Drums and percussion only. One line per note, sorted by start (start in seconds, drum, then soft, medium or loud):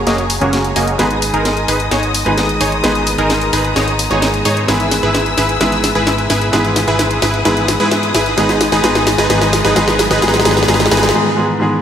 0.07 snare medium
0.07 closed hi-hat medium
0.18 closed hi-hat soft
0.30 open hi-hat loud
0.41 closed hi-hat soft
0.53 snare medium
0.53 closed hi-hat medium
0.64 closed hi-hat soft
0.76 open hi-hat loud
0.88 closed hi-hat soft
0.99 snare medium
0.99 closed hi-hat medium
1.11 closed hi-hat soft
1.22 open hi-hat loud
1.34 closed hi-hat soft
1.45 snare medium
1.45 closed hi-hat medium
1.57 closed hi-hat soft
1.68 open hi-hat loud
1.80 closed hi-hat soft
1.91 snare medium
1.91 closed hi-hat medium
2.03 closed hi-hat soft
2.14 open hi-hat loud
2.26 closed hi-hat soft
2.38 snare medium
2.38 closed hi-hat medium
2.49 closed hi-hat soft
2.61 open hi-hat loud
2.72 closed hi-hat soft
2.84 snare medium
2.84 closed hi-hat medium
2.95 closed hi-hat soft
3.07 open hi-hat loud
3.18 closed hi-hat soft
3.30 snare medium
3.30 closed hi-hat medium
3.41 closed hi-hat soft
3.53 open hi-hat loud
3.65 closed hi-hat soft
3.76 snare medium
3.76 closed hi-hat medium
3.88 closed hi-hat soft
3.99 open hi-hat loud
4.11 closed hi-hat soft
4.22 snare medium
4.22 closed hi-hat medium
4.34 closed hi-hat soft
4.45 open hi-hat loud
4.57 closed hi-hat soft
4.68 snare medium
4.68 closed hi-hat medium
4.80 closed hi-hat soft
4.91 snare medium
4.91 open hi-hat loud
5.03 closed hi-hat soft
5.15 snare medium
5.15 closed hi-hat medium
5.26 closed hi-hat soft
5.38 snare medium
5.38 open hi-hat loud
5.49 closed hi-hat soft
5.61 snare medium
5.61 closed hi-hat medium
5.72 closed hi-hat soft
5.84 snare medium
5.84 open hi-hat loud
5.95 closed hi-hat soft
6.07 snare medium
6.07 closed hi-hat medium
6.18 closed hi-hat soft
6.30 snare medium
6.30 open hi-hat loud
6.41 closed hi-hat soft
6.53 snare medium
6.53 closed hi-hat medium
6.65 closed hi-hat soft
6.76 snare medium
6.76 open hi-hat loud
6.88 closed hi-hat soft
6.99 snare medium
6.99 closed hi-hat medium
7.11 closed hi-hat soft
7.22 snare medium
7.22 open hi-hat loud
7.34 closed hi-hat soft
7.45 snare medium
7.45 closed hi-hat medium
7.57 closed hi-hat soft
7.68 snare medium
7.68 open hi-hat loud
7.80 closed hi-hat soft
7.91 snare medium
7.91 closed hi-hat medium
8.03 closed hi-hat soft
8.15 snare medium
8.15 open hi-hat loud
8.26 closed hi-hat soft
8.38 snare medium
8.38 closed hi-hat medium
8.49 snare medium
8.49 closed hi-hat soft
8.61 snare medium
8.61 open hi-hat loud
8.72 snare medium
8.72 closed hi-hat soft
8.84 snare medium
8.84 closed hi-hat medium
8.95 snare medium
8.95 closed hi-hat soft
9.07 snare loud
9.07 open hi-hat loud
9.18 snare medium
9.18 closed hi-hat soft
9.30 snare loud
9.30 closed hi-hat medium
9.41 snare medium
9.41 closed hi-hat soft
9.53 snare medium
9.53 open hi-hat loud
9.65 snare medium
9.65 closed hi-hat soft
9.76 snare loud
9.76 closed hi-hat medium
9.88 snare medium
9.88 closed hi-hat soft
9.99 snare loud
9.99 open hi-hat loud
10.11 snare medium
10.11 closed hi-hat soft
10.22 snare loud
10.22 closed hi-hat medium
10.28 snare medium
10.34 snare medium
10.34 closed hi-hat soft
10.40 snare medium
10.45 snare loud
10.45 open hi-hat loud
10.51 snare medium
10.57 snare medium
10.57 closed hi-hat soft
10.63 snare medium
10.68 snare loud
10.68 closed hi-hat medium
10.74 snare medium
10.80 snare medium
10.80 closed hi-hat soft
10.86 snare medium
10.91 snare loud
10.91 open hi-hat loud
10.97 snare medium
11.03 snare medium
11.03 closed hi-hat soft
11.09 snare medium